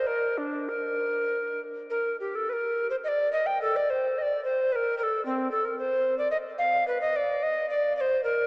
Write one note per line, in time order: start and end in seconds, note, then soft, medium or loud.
0.07 0.39 A#4 medium
0.38 0.70 D4 medium
0.69 1.61 A#4 medium
1.90 2.16 A#4 medium
2.20 2.37 G4 medium
2.35 2.51 A4 medium
2.49 2.90 A#4 medium
2.49 2.54 B4 medium
2.90 2.96 C5 medium
3.04 3.09 D#5 medium
3.08 3.31 D5 medium
3.33 3.48 D#5 medium
3.46 3.61 G5 medium
3.62 3.78 A4 medium
3.76 3.92 D5 medium
3.90 4.20 C5 medium
4.18 4.44 D5 medium
4.18 4.23 D#5 medium
4.44 4.74 C5 medium
4.72 4.98 A#4 medium
4.72 4.77 B4 medium
4.98 5.04 A#4 medium
5.03 5.24 A4 medium
5.25 5.51 C4 medium
5.51 5.66 A4 medium
5.65 5.78 A#4 medium
5.79 6.17 C5 medium
6.18 6.30 D5 medium
6.31 6.37 D#5 medium
6.58 6.86 F5 medium
6.88 7.01 B4 medium
7.01 7.18 D#5 medium
7.16 7.44 D5 medium
7.43 7.69 D#5 medium
7.70 7.96 D5 medium
7.96 8.02 D5 medium
8.01 8.23 C5 medium
8.24 8.47 A#4 medium